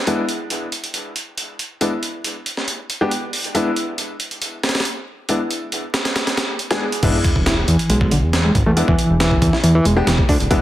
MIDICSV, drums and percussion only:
0, 0, Header, 1, 2, 480
1, 0, Start_track
1, 0, Tempo, 434783
1, 77, Time_signature, 4, 2, 24, 8
1, 11719, End_track
2, 0, Start_track
2, 0, Title_t, "Drums"
2, 78, Note_on_c, 9, 42, 78
2, 188, Note_off_c, 9, 42, 0
2, 316, Note_on_c, 9, 42, 66
2, 426, Note_off_c, 9, 42, 0
2, 556, Note_on_c, 9, 42, 80
2, 667, Note_off_c, 9, 42, 0
2, 797, Note_on_c, 9, 42, 65
2, 908, Note_off_c, 9, 42, 0
2, 923, Note_on_c, 9, 42, 41
2, 1034, Note_off_c, 9, 42, 0
2, 1037, Note_on_c, 9, 42, 80
2, 1147, Note_off_c, 9, 42, 0
2, 1277, Note_on_c, 9, 42, 66
2, 1388, Note_off_c, 9, 42, 0
2, 1518, Note_on_c, 9, 42, 89
2, 1628, Note_off_c, 9, 42, 0
2, 1758, Note_on_c, 9, 42, 57
2, 1868, Note_off_c, 9, 42, 0
2, 1998, Note_on_c, 9, 42, 82
2, 2108, Note_off_c, 9, 42, 0
2, 2238, Note_on_c, 9, 42, 62
2, 2349, Note_off_c, 9, 42, 0
2, 2479, Note_on_c, 9, 42, 81
2, 2589, Note_off_c, 9, 42, 0
2, 2717, Note_on_c, 9, 42, 64
2, 2828, Note_off_c, 9, 42, 0
2, 2841, Note_on_c, 9, 38, 33
2, 2952, Note_off_c, 9, 38, 0
2, 2957, Note_on_c, 9, 42, 88
2, 3067, Note_off_c, 9, 42, 0
2, 3197, Note_on_c, 9, 42, 64
2, 3308, Note_off_c, 9, 42, 0
2, 3437, Note_on_c, 9, 42, 83
2, 3548, Note_off_c, 9, 42, 0
2, 3677, Note_on_c, 9, 46, 74
2, 3787, Note_off_c, 9, 46, 0
2, 3801, Note_on_c, 9, 42, 43
2, 3912, Note_off_c, 9, 42, 0
2, 3917, Note_on_c, 9, 42, 83
2, 4027, Note_off_c, 9, 42, 0
2, 4156, Note_on_c, 9, 42, 67
2, 4267, Note_off_c, 9, 42, 0
2, 4396, Note_on_c, 9, 42, 78
2, 4506, Note_off_c, 9, 42, 0
2, 4635, Note_on_c, 9, 42, 64
2, 4745, Note_off_c, 9, 42, 0
2, 4760, Note_on_c, 9, 42, 42
2, 4871, Note_off_c, 9, 42, 0
2, 4876, Note_on_c, 9, 42, 84
2, 4986, Note_off_c, 9, 42, 0
2, 5116, Note_on_c, 9, 38, 78
2, 5116, Note_on_c, 9, 42, 63
2, 5177, Note_off_c, 9, 38, 0
2, 5177, Note_off_c, 9, 42, 0
2, 5177, Note_on_c, 9, 38, 86
2, 5177, Note_on_c, 9, 42, 65
2, 5242, Note_off_c, 9, 38, 0
2, 5242, Note_off_c, 9, 42, 0
2, 5242, Note_on_c, 9, 38, 83
2, 5242, Note_on_c, 9, 42, 65
2, 5299, Note_off_c, 9, 38, 0
2, 5299, Note_off_c, 9, 42, 0
2, 5299, Note_on_c, 9, 38, 83
2, 5299, Note_on_c, 9, 42, 60
2, 5356, Note_off_c, 9, 42, 0
2, 5356, Note_on_c, 9, 42, 84
2, 5409, Note_off_c, 9, 38, 0
2, 5466, Note_off_c, 9, 42, 0
2, 5836, Note_on_c, 9, 42, 79
2, 5947, Note_off_c, 9, 42, 0
2, 6078, Note_on_c, 9, 42, 64
2, 6188, Note_off_c, 9, 42, 0
2, 6317, Note_on_c, 9, 42, 81
2, 6428, Note_off_c, 9, 42, 0
2, 6556, Note_on_c, 9, 38, 100
2, 6556, Note_on_c, 9, 42, 76
2, 6667, Note_off_c, 9, 38, 0
2, 6667, Note_off_c, 9, 42, 0
2, 6683, Note_on_c, 9, 38, 94
2, 6683, Note_on_c, 9, 42, 72
2, 6793, Note_off_c, 9, 38, 0
2, 6793, Note_off_c, 9, 42, 0
2, 6798, Note_on_c, 9, 38, 105
2, 6798, Note_on_c, 9, 42, 78
2, 6908, Note_off_c, 9, 38, 0
2, 6908, Note_off_c, 9, 42, 0
2, 6923, Note_on_c, 9, 38, 102
2, 6923, Note_on_c, 9, 42, 76
2, 7034, Note_off_c, 9, 38, 0
2, 7034, Note_off_c, 9, 42, 0
2, 7037, Note_on_c, 9, 38, 97
2, 7037, Note_on_c, 9, 42, 75
2, 7147, Note_off_c, 9, 38, 0
2, 7147, Note_off_c, 9, 42, 0
2, 7277, Note_on_c, 9, 42, 62
2, 7387, Note_off_c, 9, 42, 0
2, 7403, Note_on_c, 9, 38, 96
2, 7403, Note_on_c, 9, 42, 72
2, 7513, Note_off_c, 9, 38, 0
2, 7513, Note_off_c, 9, 42, 0
2, 7644, Note_on_c, 9, 42, 61
2, 7754, Note_off_c, 9, 42, 0
2, 7757, Note_on_c, 9, 42, 92
2, 7757, Note_on_c, 9, 49, 94
2, 7758, Note_on_c, 9, 36, 114
2, 7868, Note_off_c, 9, 42, 0
2, 7868, Note_off_c, 9, 49, 0
2, 7869, Note_off_c, 9, 36, 0
2, 7998, Note_on_c, 9, 36, 96
2, 7998, Note_on_c, 9, 42, 68
2, 8108, Note_off_c, 9, 42, 0
2, 8109, Note_off_c, 9, 36, 0
2, 8124, Note_on_c, 9, 36, 95
2, 8234, Note_off_c, 9, 36, 0
2, 8239, Note_on_c, 9, 38, 113
2, 8239, Note_on_c, 9, 42, 83
2, 8349, Note_off_c, 9, 38, 0
2, 8349, Note_off_c, 9, 42, 0
2, 8479, Note_on_c, 9, 42, 70
2, 8589, Note_off_c, 9, 42, 0
2, 8604, Note_on_c, 9, 42, 44
2, 8715, Note_off_c, 9, 42, 0
2, 8718, Note_on_c, 9, 42, 92
2, 8828, Note_off_c, 9, 42, 0
2, 8843, Note_on_c, 9, 36, 99
2, 8954, Note_off_c, 9, 36, 0
2, 8959, Note_on_c, 9, 42, 70
2, 9069, Note_off_c, 9, 42, 0
2, 9199, Note_on_c, 9, 38, 121
2, 9199, Note_on_c, 9, 42, 95
2, 9309, Note_off_c, 9, 38, 0
2, 9309, Note_off_c, 9, 42, 0
2, 9439, Note_on_c, 9, 36, 93
2, 9440, Note_on_c, 9, 42, 64
2, 9549, Note_off_c, 9, 36, 0
2, 9550, Note_off_c, 9, 42, 0
2, 9679, Note_on_c, 9, 42, 90
2, 9789, Note_off_c, 9, 42, 0
2, 9803, Note_on_c, 9, 36, 87
2, 9914, Note_off_c, 9, 36, 0
2, 9920, Note_on_c, 9, 42, 68
2, 10030, Note_off_c, 9, 42, 0
2, 10159, Note_on_c, 9, 38, 110
2, 10159, Note_on_c, 9, 42, 84
2, 10269, Note_off_c, 9, 38, 0
2, 10269, Note_off_c, 9, 42, 0
2, 10284, Note_on_c, 9, 36, 97
2, 10394, Note_off_c, 9, 36, 0
2, 10399, Note_on_c, 9, 36, 95
2, 10400, Note_on_c, 9, 42, 75
2, 10509, Note_off_c, 9, 36, 0
2, 10510, Note_off_c, 9, 42, 0
2, 10525, Note_on_c, 9, 38, 38
2, 10635, Note_off_c, 9, 38, 0
2, 10639, Note_on_c, 9, 42, 92
2, 10750, Note_off_c, 9, 42, 0
2, 10879, Note_on_c, 9, 42, 65
2, 10989, Note_off_c, 9, 42, 0
2, 11119, Note_on_c, 9, 38, 122
2, 11119, Note_on_c, 9, 42, 93
2, 11229, Note_off_c, 9, 38, 0
2, 11229, Note_off_c, 9, 42, 0
2, 11243, Note_on_c, 9, 36, 96
2, 11353, Note_off_c, 9, 36, 0
2, 11358, Note_on_c, 9, 36, 96
2, 11358, Note_on_c, 9, 46, 82
2, 11468, Note_off_c, 9, 36, 0
2, 11468, Note_off_c, 9, 46, 0
2, 11485, Note_on_c, 9, 42, 46
2, 11595, Note_off_c, 9, 42, 0
2, 11598, Note_on_c, 9, 36, 107
2, 11599, Note_on_c, 9, 42, 88
2, 11709, Note_off_c, 9, 36, 0
2, 11710, Note_off_c, 9, 42, 0
2, 11719, End_track
0, 0, End_of_file